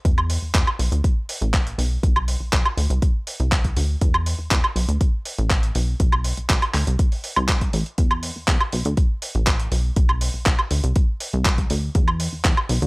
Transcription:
0.05 analog synth bass E2, kick, closed hi-hat
0.18 high woodblock
0.30 open hi-hat
0.42 analog synth bass E2
0.55 analog synth bass E2, kick, clap, closed hi-hat
0.67 high woodblock
0.79 analog synth bass B1, open hi-hat
0.92 analog synth bass D2, closed hi-hat
1.04 kick, closed hi-hat
1.29 open hi-hat
1.41 analog synth bass A1, closed hi-hat
1.54 kick, clap, closed hi-hat
1.67 closed hi-hat
1.78 analog synth bass B1, open hi-hat
2.03 analog synth bass B1, kick, closed hi-hat
2.16 high woodblock
2.28 open hi-hat
2.40 analog synth bass B1
2.53 analog synth bass B1, kick, clap, closed hi-hat
2.65 high woodblock
2.77 analog synth bass D2, open hi-hat
2.90 analog synth bass C2, closed hi-hat
3.02 kick, closed hi-hat
3.27 open hi-hat
3.40 analog synth bass C2, closed hi-hat
3.52 kick, clap, closed hi-hat
3.64 kick, closed hi-hat
3.77 analog synth bass D2, open hi-hat
4.01 analog synth bass E2, kick, closed hi-hat
4.14 high woodblock
4.26 open hi-hat
4.39 analog synth bass E2
4.51 analog synth bass E2, kick, clap, closed hi-hat
4.64 high woodblock
4.76 analog synth bass B1, open hi-hat
4.89 analog synth bass D2, closed hi-hat
5.01 kick, closed hi-hat
5.25 open hi-hat
5.38 analog synth bass A1, closed hi-hat
5.50 kick, clap, closed hi-hat
5.63 closed hi-hat
5.75 analog synth bass B1, open hi-hat
6.00 analog synth bass B1, kick, closed hi-hat
6.12 high woodblock
6.24 open hi-hat
6.37 analog synth bass B1, closed hi-hat
6.50 analog synth bass B1, kick, clap, closed hi-hat
6.62 closed hi-hat, high woodblock
6.74 analog synth bass D2, clap, open hi-hat
6.87 analog synth bass C2, closed hi-hat
6.99 kick, closed hi-hat
7.12 open hi-hat
7.24 open hi-hat
7.36 analog synth bass C2, closed hi-hat, high woodblock
7.48 kick, clap, closed hi-hat
7.61 kick, closed hi-hat
7.73 analog synth bass A1, open hi-hat
7.86 closed hi-hat
7.98 analog synth bass E2, kick, closed hi-hat
8.11 high woodblock
8.23 open hi-hat
8.36 analog synth bass E2
8.48 analog synth bass E2, kick, clap, closed hi-hat
8.60 high woodblock
8.72 analog synth bass B1, open hi-hat
8.85 analog synth bass D2, closed hi-hat
8.97 kick, closed hi-hat
9.22 open hi-hat
9.35 analog synth bass A1, closed hi-hat
9.47 kick, clap, closed hi-hat
9.60 closed hi-hat
9.72 analog synth bass B1, open hi-hat
9.96 analog synth bass B1, kick, closed hi-hat
10.09 high woodblock
10.21 open hi-hat
10.34 analog synth bass B1
10.46 analog synth bass B1, kick, clap, closed hi-hat
10.59 high woodblock
10.71 analog synth bass D2, open hi-hat
10.84 analog synth bass C2, closed hi-hat
10.96 kick, closed hi-hat
11.20 open hi-hat
11.33 analog synth bass C2, closed hi-hat
11.45 kick, clap, closed hi-hat
11.58 kick, closed hi-hat
11.70 analog synth bass D2, open hi-hat
11.95 analog synth bass E2, kick, closed hi-hat
12.08 high woodblock
12.20 open hi-hat
12.33 analog synth bass E2
12.45 analog synth bass E2, kick, clap, closed hi-hat
12.57 high woodblock
12.69 analog synth bass B1, open hi-hat
12.82 analog synth bass D2, closed hi-hat

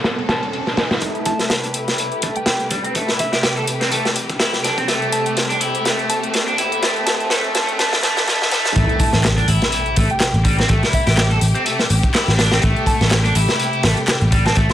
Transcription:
Already playing: string section C3 A3 B3 A4, riser
0.04 snare, closed hi-hat
0.18 closed hi-hat
0.29 synth bell A5, snare, closed hi-hat
0.43 closed hi-hat
0.53 closed hi-hat
0.67 snare, closed hi-hat
0.77 snare, closed hi-hat
0.91 snare, closed hi-hat
1.02 string section C3 A3 G4 B4, overdriven electric guitar A3, kick, closed hi-hat, riser
1.15 closed hi-hat
1.25 synth bell A5, kick, closed hi-hat
1.39 snare, closed hi-hat
1.50 snare, closed hi-hat
1.64 overdriven electric guitar D4, closed hi-hat
1.74 overdriven electric guitar E4, closed hi-hat
1.88 snare, closed hi-hat
1.98 closed hi-hat
2.12 closed hi-hat
2.22 overdriven electric guitar A3, kick, closed hi-hat
2.36 synth bell G5, closed hi-hat
2.46 synth bell G5, snare, closed hi-hat
2.60 closed hi-hat
2.71 overdriven electric guitar G3, kick, closed hi-hat
2.84 overdriven electric guitar C4, closed hi-hat
2.95 overdriven electric guitar A3, kick, closed hi-hat
3.08 overdriven electric guitar E4, snare, closed hi-hat
3.19 synth bell E5, kick, closed hi-hat
3.33 overdriven electric guitar G4, synth bell E5, snare, closed hi-hat
3.43 overdriven electric guitar G4, snare, closed hi-hat
3.57 overdriven electric guitar A4, closed hi-hat
3.67 closed hi-hat
3.81 overdriven electric guitar C4, snare, closed hi-hat
3.92 overdriven electric guitar A3, closed hi-hat
4.05 snare, closed hi-hat
4.16 closed hi-hat
4.29 kick, closed hi-hat
4.40 overdriven electric guitar E4, snare, closed hi-hat
4.53 snare, closed hi-hat
4.64 overdriven electric guitar D4, snare, closed hi-hat
4.78 overdriven electric guitar C4, kick, closed hi-hat
4.88 overdriven electric guitar A3, string section C4, snare, closed hi-hat
5.02 closed hi-hat
5.12 synth bell A5, closed hi-hat
5.26 closed hi-hat
5.37 snare, closed hi-hat
5.50 overdriven electric guitar D4, closed hi-hat
5.61 overdriven electric guitar E4, closed hi-hat
5.75 closed hi-hat
5.85 overdriven electric guitar A3, snare, closed hi-hat
5.99 closed hi-hat
6.10 synth bell A5, closed hi-hat
6.23 closed hi-hat
6.34 snare, closed hi-hat
6.48 overdriven electric guitar D4, closed hi-hat
6.58 overdriven electric guitar E4, closed hi-hat
6.72 closed hi-hat
6.82 overdriven electric guitar A3, snare, closed hi-hat
6.96 closed hi-hat
7.06 synth bell A5, snare, closed hi-hat
7.20 closed hi-hat
7.30 overdriven electric guitar A3, snare, closed hi-hat
7.44 closed hi-hat
7.55 synth bell A5, snare, closed hi-hat
7.69 closed hi-hat
7.79 overdriven electric guitar A3, synth bell A5, snare, closed hi-hat
7.93 snare, closed hi-hat
8.03 overdriven electric guitar A3, synth bell A5, snare, closed hi-hat
8.17 snare, closed hi-hat
8.27 overdriven electric guitar A3, synth bell A5, snare, closed hi-hat
8.41 snare, closed hi-hat
8.51 overdriven electric guitar A3, synth bell A5, snare, closed hi-hat
8.65 snare, closed hi-hat
8.75 picked electric bass A1, string section C3 A3 G4, overdriven electric guitar A3, kick, closed hi-hat, impact
8.89 closed hi-hat
8.99 synth bell A5, kick, closed hi-hat, open hi-hat
9.13 picked electric bass A1, snare, closed hi-hat
9.24 snare, clap, closed hi-hat
9.38 overdriven electric guitar D4, closed hi-hat
9.48 picked electric bass A1, overdriven electric guitar E4, closed hi-hat, open hi-hat
9.62 snare, closed hi-hat
9.72 closed hi-hat
9.86 closed hi-hat
9.96 picked electric bass A1, overdriven electric guitar A3, kick, closed hi-hat, open hi-hat
10.10 synth bell G5, closed hi-hat
10.20 synth bell G5, snare, clap, closed hi-hat
10.34 picked electric bass A1, closed hi-hat
10.45 overdriven electric guitar G3, kick, closed hi-hat, open hi-hat
10.59 overdriven electric guitar C4, snare, closed hi-hat
10.69 picked electric bass A1, overdriven electric guitar A3, kick, closed hi-hat
10.83 overdriven electric guitar E4, snare, closed hi-hat
10.93 synth bell E5, kick, closed hi-hat, open hi-hat
11.07 picked electric bass A1, overdriven electric guitar G4, synth bell E5, snare, open hi-hat
11.17 overdriven electric guitar G4, snare, clap, closed hi-hat
11.31 overdriven electric guitar A4, closed hi-hat
11.41 picked electric bass A1, closed hi-hat, open hi-hat
11.55 overdriven electric guitar C4, closed hi-hat
11.66 overdriven electric guitar A3, closed hi-hat
11.79 snare, closed hi-hat
11.90 picked electric bass A1, closed hi-hat, open hi-hat
12.03 kick, closed hi-hat
12.14 overdriven electric guitar E4, snare, clap, closed hi-hat
12.28 picked electric bass A1, snare, closed hi-hat
12.39 overdriven electric guitar D4, snare, closed hi-hat, open hi-hat
12.52 overdriven electric guitar C4, snare, closed hi-hat
12.62 picked electric bass A1, overdriven electric guitar A3, kick, closed hi-hat
12.76 closed hi-hat
12.86 synth bell A5, kick, closed hi-hat, open hi-hat
13.01 picked electric bass A1, snare, closed hi-hat
13.10 snare, clap, closed hi-hat
13.25 overdriven electric guitar D4, closed hi-hat
13.35 picked electric bass A1, overdriven electric guitar E4, closed hi-hat, open hi-hat
13.49 snare, closed hi-hat
13.59 closed hi-hat
13.73 closed hi-hat
13.83 picked electric bass A1, overdriven electric guitar A3, snare, closed hi-hat, open hi-hat
13.97 closed hi-hat
14.08 snare, clap, closed hi-hat
14.22 picked electric bass A1, closed hi-hat
14.32 overdriven electric guitar G3, kick, closed hi-hat, open hi-hat
14.46 overdriven electric guitar C4, synth bell A5, snare, closed hi-hat
14.55 picked electric bass A1, overdriven electric guitar A3, kick, closed hi-hat
14.69 overdriven electric guitar E4, snare, closed hi-hat

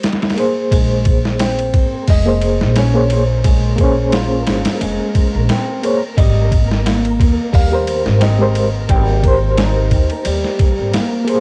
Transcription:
Already playing: reed electric piano G#3 G4 A#4 C5
0.03 snare, ride
0.12 snare, ride
0.22 snare, ride
0.30 snare, ride
0.34 reed electric piano A#3 G#4, ride
0.39 reed electric piano C5
0.72 upright bass A#1, clean electric guitar G#3, synth texture A#3 A#4, kick, ride
1.05 kick, ride
1.25 snare
1.39 clean electric guitar C4, felt piano C5, snare, ride
1.59 ride
1.74 upright bass G#1, kick, ride
2.07 upright bass F1, clean electric guitar G#3, felt piano D#5, kick, open hi-hat
2.26 reed electric piano A#3 G#4 C5
2.42 ride
2.61 upright bass A#1, snare
2.76 clean electric guitar C#4, felt piano C#5, snare, ride
2.94 reed electric piano A#3 G#4 C5 C#5
3.10 felt piano C5, ride
3.44 upright bass A#1, clean electric guitar G#3, kick, ride
3.76 reed electric piano A#3 G#4, kick, ride
3.81 reed electric piano C#4 C5
4.12 clean electric guitar F4, snare, ride
4.47 upright bass G#1, snare, ride
4.65 snare, ride
4.81 upright bass F1, clean electric guitar G#3, ride
5.15 kick, ride
5.35 upright bass A#1
5.49 clean electric guitar C4, snare, ride
5.82 reed electric piano A#3 G#4 C5 C#5, ride
6.17 upright bass G#1, clean electric guitar G3, felt piano D#5, kick, ride
6.52 kick, ride
6.71 snare
6.86 clean electric guitar A#3, snare, ride
7.05 ride
7.20 upright bass D#2, kick, ride
7.53 upright bass D#2, clean electric guitar G3, felt piano F5, kick, open hi-hat
7.72 reed electric piano G4 A#4 C5
7.88 ride
8.06 upright bass G#1, snare
8.21 clean electric guitar C4, felt piano D#5, snare, ride
8.39 reed electric piano G#3 G4 A#4 C5
8.55 ride
8.89 upright bass G#1, clean electric guitar G3, felt piano G5, kick, ride
9.23 reed electric piano G4 A#4, kick, ride
9.28 reed electric piano C5
9.57 clean electric guitar D#4, snare, ride
9.91 upright bass D#2, kick, ride
10.10 ride
10.25 upright bass D#2, clean electric guitar G3, ride
10.44 snare
10.59 kick, ride
10.79 upright bass G#1
10.94 clean electric guitar A#3, snare, ride
11.25 reed electric piano A#3 G#4, ride
11.29 reed electric piano C5

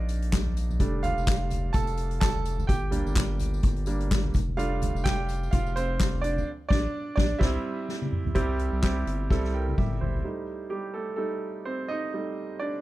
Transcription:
Already playing: analog synth bass A#1, grand piano A#3 C4 D4 D#4 F4 D5 D#5 F5
0.09 closed hi-hat, tambourine
0.22 closed hi-hat
0.33 kick, snare, clap, closed hi-hat, tambourine
0.46 floor tom
0.57 closed hi-hat, tambourine
0.70 floor tom, tambourine
0.80 analog synth bass F1, grand piano G3 A3 D4, kick, closed hi-hat, tambourine
1.03 grand piano F4 F5, closed hi-hat, floor tom, tambourine
1.17 analog synth bass F1, tambourine
1.27 kick, snare, clap, closed hi-hat, tambourine
1.50 closed hi-hat, floor tom, tambourine
1.73 analog synth bass F1, grand piano A4 A5, kick, closed hi-hat, tambourine
1.87 closed hi-hat, tambourine
1.97 closed hi-hat, tambourine
2.11 closed hi-hat
2.21 grand piano A4 A5, kick, snare, clap, closed hi-hat, tambourine
2.35 floor tom
2.45 closed hi-hat, tambourine
2.58 floor tom, tambourine
2.67 analog synth bass G1, grand piano G4 G5, kick, closed hi-hat, tambourine
2.91 grand piano G3 A#3 D4, closed hi-hat, floor tom, tambourine
3.06 analog synth bass G1, tambourine
3.15 kick, snare, clap, closed hi-hat, tambourine
3.39 closed hi-hat, floor tom, tambourine
3.54 tambourine
3.63 analog synth bass G1, kick, closed hi-hat, tambourine
3.76 closed hi-hat
3.86 grand piano G3 A#3 D4, closed hi-hat, tambourine
4.00 closed hi-hat
4.11 kick, snare, clap, closed hi-hat, tambourine
4.25 floor tom
4.34 analog synth bass F1, kick, closed hi-hat, tambourine
4.48 floor tom
4.57 grand piano G3 A3 D4 F4 F5, closed hi-hat, tambourine
4.82 closed hi-hat, floor tom, tambourine
4.94 analog synth bass F1, tambourine
5.04 grand piano G4 G5, kick, snare, clap, closed hi-hat, tambourine
5.29 closed hi-hat, tambourine
5.43 tambourine
5.51 analog synth bass F1, grand piano F4 F5, kick, closed hi-hat, tambourine
5.66 tambourine
5.76 grand piano C4 C5, closed hi-hat, tambourine
6.00 kick, snare, clap, closed hi-hat, tambourine
6.13 floor tom
6.21 grand piano D4 D5, closed hi-hat, tambourine
6.37 floor tom, tambourine
6.69 analog synth bass A#1, grand piano D4 D5, kick, snare, crash
7.16 analog synth bass A#1, grand piano D4 D5, kick, snare
7.39 analog synth bass C2, grand piano G3 C4 E4 E5, kick, snare, crash
7.88 snare
8.02 high tom
8.12 mid tom
8.25 floor tom
8.35 analog synth bass C2, grand piano C3 G3 C4 E4 G4, kick, closed hi-hat
8.59 closed hi-hat
8.72 analog synth bass C2
8.83 grand piano G3 C4 E4 G4, kick, snare, clap, closed hi-hat
9.07 analog synth bass G1, closed hi-hat
9.30 analog synth bass C2, grand piano G3 C4 E4 A4, kick, snare
9.44 snare
9.54 grand piano A#4 G5
9.68 high tom
9.78 analog synth bass G1, grand piano G4 E5, kick, mid tom
10.01 analog synth bass G1, grand piano E4 C5, floor tom
10.15 floor tom
10.24 grand piano G3 A3 D#4
10.70 grand piano G3 G4
10.94 grand piano A3 A4
11.16 grand piano G3 A3 D#4 A4
11.65 grand piano C4 C5
11.88 grand piano D#4 D#5
12.14 grand piano G3 A3 D#4
12.59 grand piano D4 D5

